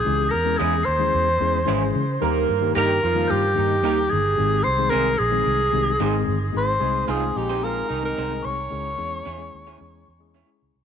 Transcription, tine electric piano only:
\new Staff \with { instrumentName = "Tine electric piano" } { \time 4/4 \key aes \major \tempo 4 = 111 <fes aes des' fes' aes'>8 r16 <fes aes des' fes' aes'>8. r16 <fes aes des' fes' aes'>8 r16 <fes aes des' fes' aes'>16 r16 <fes aes des' fes' aes'>8. r16 | <ees g bes ees' g'>8 r16 <ees g bes ees' g'>8. r16 <ees g bes ees' f'>8 r16 <ees g bes ees' g'>16 r16 <ees g bes ees' g'>8. r16 | <ees aes c' ees' aes'>8 r16 <ees aes c' ees' aes'>8. r16 <ees aes c' ees' aes'>8 r16 <ees aes c' ees' g'>16 r16 <ees aes c' ees' aes'>8. r16 | <aes c' ees' aes'>16 r16 <aes c' ees' aes'>8 r16 <aes c' ees' aes'>8 r16 <aes c' ees' aes'>8 r16 <aes c' ees' bes'>16 r16 <aes c' ees' aes'>8 r16 |
<aes des' fes' aes'>16 r16 <aes des' fes' aes'>8 r16 <aes des' fes' aes'>8 r16 <aes des' fes' aes'>8 r16 <aes des' fes' aes'>16 r16 <aes des' fes' aes'>8 r16 | }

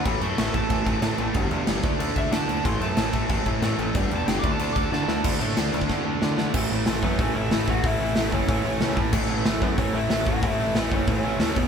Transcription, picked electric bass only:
\new Staff \with { instrumentName = "Picked electric bass" } { \clef bass \time 4/4 \key a \major \tempo 4 = 185 a,,8 fis,8 a,,8 a,,8 a,,8 a,,8 a,8 a,,8 | g,,8 e,8 g,,8 d,8 d,8 d,8 d8 d,8 | a,,8 fis,8 a,,8 a,,8 a,,8 a,,8 a,8 a,,8 | g,,8 e,8 g,,8 d,8 d,8 d,8 d8 d,8 |
d,8 a,8 d,8 d,8 d,4 d4 | a,,8 a,,8 a,,8 fis,8 a,,8 a,,8 a,,4 | a,,8 a,,8 a,,8 fis,,8 a,,8 a,,8 cis,8 a,8 | a,,8 a,,8 a,,8 fis,8 a,,8 a,,8 a,,4 |
a,,8 a,,8 a,,8 fis,,8 a,,8 a,,8 dis,8 e,,8 | }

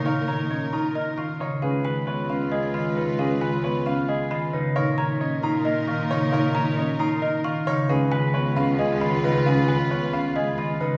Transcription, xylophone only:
\new Staff \with { instrumentName = "Xylophone" } { \time 7/8 \key cis \mixolydian \tempo 4 = 134 eis''8 ais''8 r8 cis'''8 dis''8 cis'''8 r8 | eis''8 gis''8 r8 b''8 dis''8 b''8 r8 | eis''8 gis''8 r8 b''8 dis''8 b''8 r8 | eis''8 ais''8 r8 cis'''8 dis''8 cis'''8 r8 |
eis''8 ais''8 r8 cis'''8 dis''8 cis'''8 r8 | eis''8 gis''8 r8 b''8 dis''8 b''8 r8 | eis''8 gis''8 r8 b''8 dis''8 b''8 r8 | }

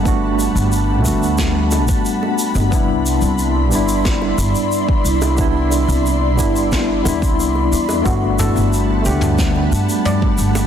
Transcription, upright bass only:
\new Staff \with { instrumentName = "Upright bass" } { \clef bass \time 4/4 \key g \major \tempo 4 = 90 g,,8. g,,8. d,4~ d,16 g,,16 r8. g,,16 | c,8. c,8. g,,4 g,,16 r8. c,8~ | c,8. c,8. g,,4 e,16 c,8. e,8 | g,,8. g,,8. d,4 g,16 r8. g,,8 | }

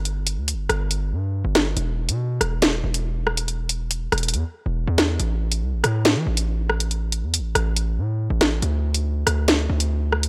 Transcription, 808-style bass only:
\new Staff \with { instrumentName = "808-style bass" } { \clef bass \time 4/4 \key e \phrygian \tempo 4 = 140 g,,8. d,16. g,,16. g,,4 g,8. g,,8. | e,,8. b,8. e,,4 e,,4.~ | e,,4. e,,8 e,16 r8 e,,8 e,8. | a,,4 c,16 a,,16 a,8. e16 a,,4.~ |
a,,8. e,16. a,,16. a,,4 a,8. a,,8. | d,4. d,4 d,4. | }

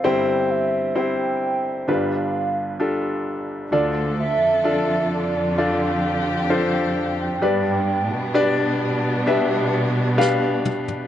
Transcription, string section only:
\new Staff \with { instrumentName = "String section" } { \time 4/4 \key d \dorian \tempo 4 = 65 << { r1 | a'2 g'2 | d'1 | } \\ { r1 | <d d' f'>1 | <g b>1 | } >> }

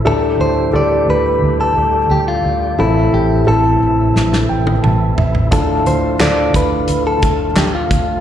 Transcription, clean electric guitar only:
\new Staff \with { instrumentName = "Clean electric guitar" } { \time 4/4 \key d \dorian \tempo 4 = 88 a'8 c''8 d''8 b'8. a'8. g'16 f'8. | e'8 g'8 a'4. r4. | a'8 c''8 d''8 b'8. a'8. g'16 f'8. | }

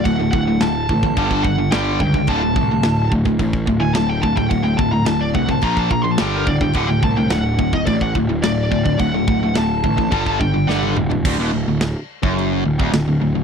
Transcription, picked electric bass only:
\new Staff \with { instrumentName = "Picked electric bass" } { \clef bass \time 4/4 \tempo 4 = 107 d,,8 d,,8 d,,8 a,,8 g,,4 g,,8 cis,8 | d,,8 c,8 d,,4 a,,8 d,,8 d,,8 d,,8 | d,,8 d,,8 d,,8 c,8 bes,,4 g,,8 d,,8 | d,,8 c,8 d,,4 a,,8 d,,8 d,,8 d,,8 |
d,,8 d,,8 d,,8 a,,8 g,,4 g,,8 d,,8 | d,,16 ees,,16 d,,16 d,,8 r8 fis,,8. d,,16 d,,16 d,,16 d,,16 d,,16 d,,16 | }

